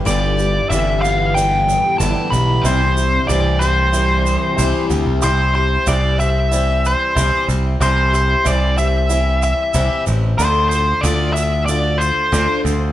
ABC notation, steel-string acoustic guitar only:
X:1
M:4/4
L:1/8
Q:1/4=93
K:C
V:1 name="Steel-string acoustic guitar"
[G,,D,E,G,B,G] [E,G,B,G] [G,,D,E,G,B,G] [E,G,B,G] [E,G,B,G]2 [G,,D,E,G,B,G] [E,G,B,G] | [C,E,G,EG] [G,EG] [C,E,G,EG] [G,EG] [E,G,EG]2 [C,E,G,EG] [G,EG] | [C,E,G,CG] [G,CG] [C,E,G,CG] [G,CG] [E,G,CG]2 [C,E,G,CG] [G,CG] | [C,E,G,CG] [G,CG] [C,E,G,CG] [G,CG] [E,G,CG]2 [C,E,G,CG] [G,CG] |
[D,A,DF] [A,DF] [D,A,DF] [A,DF] [D,A,DF]2 [D,A,DF] [A,DF] |]